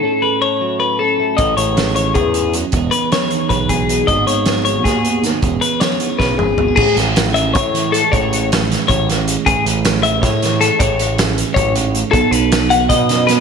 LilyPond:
<<
  \new Staff \with { instrumentName = "Clean electric guitar" } { \time 7/8 \key a \lydian \tempo 4 = 156 a'8 b'8 cis''4 b'8 a'4 | dis''8 cis''4 cis''8 gis'4 r8 | r8 b'8 cis''4 b'8 gis'4 | dis''8 cis''4 cis''8 gis'4 r8 |
r8 b'8 cis''4 b'8 gis'4 | gis'8 r4 e''8 cis''4 a'8 | cis''4 r4 cis''8 r4 | gis'8 r4 e''8 cis''4 a'8 |
cis''4 r4 cis''8 r4 | a'8 b'4 fis''8 dis''4 b'8 | }
  \new Staff \with { instrumentName = "Clean electric guitar" } { \time 7/8 \key a \lydian << { <cis' e' a'>4 a'8 e'8 a'8 cis'8 e'8 | <gis cis' gis'>4 gis'8 cis'2 | <gis dis' gis'>4 gis'8 dis'8 gis'8 gis8 dis'8 | <b dis' fis'>4 fis'8 dis'8 fis'8 b8 dis'8 |
<gis cis' gis'>4 gis'8 b16 cis'16 gis'8 gis8 b16 cis'16 | gis'8 cis'4 gis'8 cis'4 gis8 | gis'8 cis'4 gis'8 cis'4 gis8 | gis'8 cis'4 gis'8 b16 cis'8. gis8 |
gis'8 cis'4 gis'2 | <fis b dis' a'>8 dis'4 e'16 fis'16 dis'4 b8 | } \\ { a,4. fis4. a,8 | a,4. e8 a,8 gis,8 fis,8 | e,4. e4. b,8 | gis,4. gis4. dis8 |
e,4. e4. b,8 | a,4. e4 e4 | a,4. e4 e4 | a,4. e4 e4 |
a,4. e8 fis,8 gis,8 a,8 | b,4. fis4 fis,4 | } >> }
  \new Staff \with { instrumentName = "Picked electric bass" } { \clef bass \time 7/8 \key a \lydian r2. r8 | a,,8 a,,4. e,4. | e,,8 r4. b,,8 b,,4 | gis,,8 gis,,4. dis,4. |
e,,8 r4. b,,8 gis,,4 | a,,16 r16 a,,4. a,4. | a,,2 a,,4. | a,,16 r16 a,,4. a,4. |
a,,2 a,,4. | b,,16 r16 b,,4. b,4. | }
  \new DrumStaff \with { instrumentName = "Drums" } \drummode { \time 7/8 r4 r4 r4. | <hh bd>8 hh8 <hh sn>8 hh8 <hh bd>8 hh8 hh8 | <hh bd>8 hh8 <hh sn>8 hh8 <hh bd>8 <hh bd>8 hh8 | <hh bd>8 hh8 <hh sn>8 hh8 <hh bd sn>8 hh8 <hh sn>8 |
<hh bd>8 hh8 <hh sn>8 hh8 <bd sn>8 toml8 tomfh8 | <cymc bd>8 <hh sn>8 <hh sn>8 hh8 <hh bd>8 hh8 hh8 | <hh bd>8 hh8 <hh sn>8 <hh sn>8 <hh bd>8 <hh sn>8 hh8 | <hh bd>8 hh8 <hh sn>8 hh8 <hh bd sn>8 <hh sn>8 hh8 |
<hh bd>8 hh8 <hh sn>8 hh8 <hh bd>8 hh8 hh8 | <hh bd>8 hh8 <hh sn>8 hh8 <hh bd>8 <hh sn>8 <hh sn>8 | }
>>